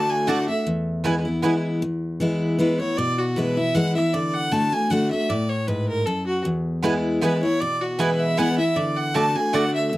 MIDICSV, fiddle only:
0, 0, Header, 1, 2, 480
1, 0, Start_track
1, 0, Tempo, 385852
1, 827, Time_signature, 3, 2, 24, 8
1, 12409, End_track
2, 0, Start_track
2, 0, Title_t, "Fiddle"
2, 0, Program_c, 0, 110
2, 0, Note_on_c, 0, 81, 103
2, 119, Note_on_c, 0, 80, 96
2, 138, Note_off_c, 0, 81, 0
2, 345, Note_on_c, 0, 78, 86
2, 364, Note_off_c, 0, 80, 0
2, 593, Note_off_c, 0, 78, 0
2, 600, Note_on_c, 0, 76, 84
2, 810, Note_off_c, 0, 76, 0
2, 3221, Note_on_c, 0, 71, 77
2, 3461, Note_off_c, 0, 71, 0
2, 3477, Note_on_c, 0, 73, 93
2, 3696, Note_on_c, 0, 74, 105
2, 3715, Note_off_c, 0, 73, 0
2, 3958, Note_on_c, 0, 66, 82
2, 3977, Note_off_c, 0, 74, 0
2, 4182, Note_on_c, 0, 71, 85
2, 4201, Note_off_c, 0, 66, 0
2, 4440, Note_on_c, 0, 76, 102
2, 4459, Note_off_c, 0, 71, 0
2, 4665, Note_on_c, 0, 78, 101
2, 4684, Note_off_c, 0, 76, 0
2, 4912, Note_off_c, 0, 78, 0
2, 4920, Note_on_c, 0, 76, 85
2, 5147, Note_on_c, 0, 74, 87
2, 5165, Note_off_c, 0, 76, 0
2, 5402, Note_on_c, 0, 78, 100
2, 5421, Note_off_c, 0, 74, 0
2, 5620, Note_on_c, 0, 81, 102
2, 5639, Note_off_c, 0, 78, 0
2, 5876, Note_on_c, 0, 80, 107
2, 5895, Note_off_c, 0, 81, 0
2, 6100, Note_on_c, 0, 78, 91
2, 6119, Note_off_c, 0, 80, 0
2, 6347, Note_off_c, 0, 78, 0
2, 6354, Note_on_c, 0, 76, 97
2, 6586, Note_on_c, 0, 74, 87
2, 6605, Note_off_c, 0, 76, 0
2, 6832, Note_on_c, 0, 73, 80
2, 6851, Note_off_c, 0, 74, 0
2, 7061, Note_on_c, 0, 71, 77
2, 7079, Note_off_c, 0, 73, 0
2, 7310, Note_off_c, 0, 71, 0
2, 7317, Note_on_c, 0, 70, 94
2, 7536, Note_on_c, 0, 69, 82
2, 7555, Note_off_c, 0, 70, 0
2, 7785, Note_off_c, 0, 69, 0
2, 7792, Note_on_c, 0, 66, 82
2, 8005, Note_off_c, 0, 66, 0
2, 8982, Note_on_c, 0, 71, 79
2, 9221, Note_off_c, 0, 71, 0
2, 9237, Note_on_c, 0, 73, 99
2, 9461, Note_on_c, 0, 74, 101
2, 9480, Note_off_c, 0, 73, 0
2, 9717, Note_on_c, 0, 66, 81
2, 9736, Note_off_c, 0, 74, 0
2, 9945, Note_on_c, 0, 71, 90
2, 9964, Note_off_c, 0, 66, 0
2, 10194, Note_on_c, 0, 76, 106
2, 10213, Note_off_c, 0, 71, 0
2, 10426, Note_on_c, 0, 78, 104
2, 10445, Note_off_c, 0, 76, 0
2, 10668, Note_off_c, 0, 78, 0
2, 10675, Note_on_c, 0, 76, 105
2, 10902, Note_on_c, 0, 74, 89
2, 10921, Note_off_c, 0, 76, 0
2, 11156, Note_on_c, 0, 78, 95
2, 11175, Note_off_c, 0, 74, 0
2, 11380, Note_on_c, 0, 81, 107
2, 11398, Note_off_c, 0, 78, 0
2, 11643, Note_on_c, 0, 80, 105
2, 11661, Note_off_c, 0, 81, 0
2, 11866, Note_on_c, 0, 78, 91
2, 11884, Note_off_c, 0, 80, 0
2, 12106, Note_off_c, 0, 78, 0
2, 12113, Note_on_c, 0, 76, 90
2, 12326, Note_off_c, 0, 76, 0
2, 12409, End_track
0, 0, End_of_file